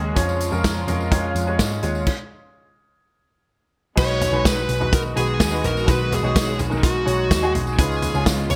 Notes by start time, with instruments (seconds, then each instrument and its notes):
Already playing: picked electric bass D#2, grand piano C#3 G#3 C#4 F#4 G#4 A#4 C#5, string section C#3 G#3 A#3 F#4
0.15 picked electric bass F2, grand piano F3 G#3 C#4 F4 C#5, string section F3 F4, kick, closed hi-hat, tambourine
0.29 tambourine
0.40 closed hi-hat, tambourine
0.51 picked electric bass F2, grand piano G#3 C#4 F4 A#4, tambourine
0.64 kick, snare, closed hi-hat, tambourine
0.87 picked electric bass F2, grand piano G#3 C#4 F4 A#4, closed hi-hat, floor tom, tambourine
1.00 tambourine
1.11 grand piano G#3 C#4 F4 C#5, kick, closed hi-hat, tambourine
1.35 picked electric bass F2, closed hi-hat, tambourine
1.47 grand piano G#3 C#4 F4 C#5
1.59 picked electric bass G#2, kick, snare, closed hi-hat, tambourine
1.82 picked electric bass D#2, grand piano G#3 C#4 F4 C#5, closed hi-hat, tambourine
1.95 tambourine
2.07 kick, crash
3.96 picked electric bass B1, string section D#3 G#3 B3 F#4, grand piano G#3 D#4 F#4 B4, lead electric guitar C#5, kick, crash, tambourine
4.21 closed hi-hat, floor tom, tambourine
4.32 picked electric bass B1, grand piano G#3 D#4 F#4 B4
4.45 lead electric guitar B4, kick, snare, closed hi-hat, tambourine
4.69 picked electric bass B1, closed hi-hat, tambourine
4.80 grand piano G#3 D#4 F#4 B4, floor tom
4.93 lead electric guitar A#4, kick, closed hi-hat, tambourine
5.15 picked electric bass B1, grand piano G#3 D#4 F#4 B4, lead electric guitar G#4, closed hi-hat, tambourine
5.40 picked electric bass D#2, lead electric guitar G#4, kick, snare, closed hi-hat, tambourine
5.52 grand piano G#3 D#4 F#4 B4
5.64 picked electric bass A#1, lead electric guitar A#4, closed hi-hat, floor tom, tambourine
5.77 tambourine
5.86 picked electric bass B1, grand piano G#3 D#4 F#4 B4, kick, closed hi-hat, tambourine
5.91 lead electric guitar B4
6.12 lead electric guitar G#4, closed hi-hat, floor tom, tambourine
6.23 picked electric bass B1, grand piano G#3 D#4 F#4 C#5
6.36 kick, snare, closed hi-hat, tambourine
6.59 picked electric bass B1, closed hi-hat, floor tom, tambourine
6.70 grand piano G#3 D#4 F#4 A#4, floor tom, tambourine
6.83 lead electric guitar F#4, kick, closed hi-hat, tambourine
7.05 picked electric bass B1, grand piano G#3 D#4 F#4 C#5, closed hi-hat, tambourine
7.31 picked electric bass D#2, kick, snare, closed hi-hat, tambourine
7.42 grand piano G#3 D#4 F#4 G#4
7.55 picked electric bass B1, closed hi-hat, floor tom, tambourine
7.67 tambourine
7.78 picked electric bass C#2, grand piano G#2 G#3 C#4 F4 B4, string section C#3 G#3 B3 F4, lead electric guitar G#4, kick, closed hi-hat, tambourine
7.92 tambourine
8.02 closed hi-hat, floor tom, tambourine
8.14 picked electric bass C#2, grand piano G#3 C#4 F4 G#4, tambourine
8.26 kick, snare, closed hi-hat, tambourine
8.50 picked electric bass C#2, lead electric guitar C#5, closed hi-hat, floor tom, tambourine